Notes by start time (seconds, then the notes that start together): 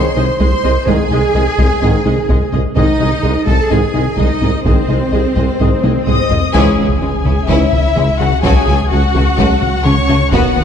Already playing: G#2 G#3 C5 C6
0.16 C2 C3 G#3 D#4 G#4 D#5
0.40 C2 G#3 G#4 C5 D#5 C6, taiko
0.64 C2 G#3 C4 G#4 D#5
0.87 C2 G#2 D#3 G#3 D#4 G#4 D#5 G#5, taiko
1.11 C2 C3 G#3 D#4 G#4 D#5
1.34 C2 G#3 G#4 D#5
1.58 C2 G#3 G#4 D#5, taiko
1.81 C2 G#2 D#3 G#3 C4 D#4 G#4 D#5, taiko low-mid
2.05 C2 C3 G#3 D#4 G#4 D#5
2.29 C2 G#3 G#4 D#5, taiko
2.52 C2 G#3 C4 G#4 D#5, taiko low-mid
2.76 C2 G#2 D#3 G#3 D#4 G#4 D#5, taiko
2.99 C2 C3 G#3 D#4 G#4 D#5
3.23 C2 G#3 G#4 D#5
3.46 C2 G#3 G#4 A4 D#5 A5, taiko
3.70 C2 G#2 D#3 G#3 C4 D#4 G#4 D#5 G#5, taiko low-mid
3.94 C2 C3 G#3 D#4 G#4 D#5
4.17 C2 G#3 D#4 G#4 D#5, taiko
4.41 C2 G#3 C4 G#4 D#5, taiko low-mid
4.65 C2 G#2 D#3 G#3 C4 D#4 G#4 C5 D#5, taiko, swell
4.89 C2 C3 G#3 D#4 G#4 D#5
5.12 C2 G#3 G#4 D#5
5.36 C2 G#3 G#4 D#5, taiko
5.59 C2 G#2 D#3 G#3 C4 D#4 G#4 D#5, taiko low-mid
5.83 C2 C3 G#3 D#4 G#4 D#5, taiko high
6.06 C2 G#3 G#4 D#5 D#6, taiko low-mid
6.30 C2 G#3 C4 G#4 D#5, taiko low
6.54 C#2 G#2 C#3 E3 G#3 C#4 E4 G#4 G#5, taiko, impact
6.78 C#2 C#4 E4
7.02 C#2 G#3 C#4
7.25 C#2 C#4 E4, taiko mid
7.48 C#2 G#2 C#3 E3 G#3 C#4 E4 E5, taiko
7.72 C#2, taiko mid
7.96 C#2 C#3 G#3 C#4, taiko mid
8.19 C#2 C#3 G#3 C#4 E4 F#4 F#5
8.43 C#2 C#3 F#3 A3 C#4 F#4 G#4 G#5, taiko
8.67 C#2 A3 F#4
8.90 C#2 A3 C#4 F#4 F#5
9.14 C#2 A3 F#4, taiko mid
9.38 C#2 C#3 F#3 A3 C#4 F#4, taiko
9.62 C#2, taiko mid
9.84 C#2 C#3 A3 C#4 C#5 C#6, taiko mid
10.09 C#2 C#3 A3 C#4 F#4
10.32 D#1 D#2 B2 F#3 B3 D#4 F#4 F#5, taiko
10.56 D#2 B3 F#4 B4